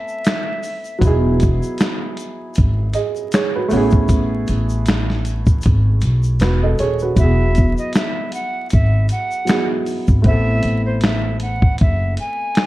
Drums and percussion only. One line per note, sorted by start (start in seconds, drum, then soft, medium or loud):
0.08 shaker soft
0.25 finger snap medium
0.25 snare loud
0.25 closed hi-hat medium
0.25 shaker medium
0.63 open hi-hat soft
0.63 shaker medium
0.84 shaker soft
1.01 kick loud
1.01 closed hi-hat medium
1.01 shaker medium
1.40 kick medium
1.40 closed hi-hat medium
1.40 shaker soft
1.63 shaker soft
1.78 finger snap medium
1.78 snare loud
1.78 closed hi-hat medium
1.78 shaker medium
2.17 closed hi-hat medium
2.17 shaker medium
2.55 kick medium
2.55 closed hi-hat medium
2.55 shaker medium
2.93 closed hi-hat medium
2.93 shaker soft
3.16 shaker soft
3.32 finger snap medium
3.32 snare loud
3.32 closed hi-hat medium
3.32 shaker medium
3.70 open hi-hat soft
3.70 shaker medium
3.91 kick medium
3.91 shaker soft
4.09 kick loud
4.09 closed hi-hat medium
4.09 shaker medium
4.47 closed hi-hat medium
4.47 shaker soft
4.69 shaker medium
4.86 finger snap medium
4.86 snare medium
4.86 closed hi-hat medium
4.86 shaker medium
5.10 snare soft
5.25 closed hi-hat medium
5.25 shaker medium
5.46 kick loud
5.46 shaker medium
5.62 closed hi-hat medium
5.62 shaker medium
5.66 kick medium
6.01 closed hi-hat medium
6.01 shaker soft
6.23 shaker soft
6.40 finger snap medium
6.40 snare loud
6.40 closed hi-hat medium
6.40 shaker medium
6.78 closed hi-hat medium
6.78 shaker soft
6.99 shaker soft
7.17 kick loud
7.17 closed hi-hat medium
7.17 shaker medium
7.55 kick medium
7.55 closed hi-hat medium
7.55 shaker soft
7.78 shaker soft
7.93 finger snap medium
7.93 snare loud
7.93 closed hi-hat medium
7.93 shaker medium
8.32 closed hi-hat medium
8.32 shaker soft
8.70 kick medium
8.70 closed hi-hat medium
8.70 shaker medium
9.09 closed hi-hat medium
9.09 shaker soft
9.31 shaker soft
9.47 finger snap medium
9.47 snare loud
9.47 closed hi-hat medium
9.47 shaker medium
9.86 open hi-hat soft
9.86 shaker medium
10.07 kick medium
10.07 shaker soft
10.24 kick loud
10.24 closed hi-hat medium
10.63 closed hi-hat medium
11.01 finger snap medium
11.01 snare loud
11.01 closed hi-hat medium
11.40 closed hi-hat medium
11.62 kick medium
11.78 kick medium
11.78 closed hi-hat medium
12.17 closed hi-hat medium
12.55 finger snap medium
12.55 snare loud
12.55 closed hi-hat medium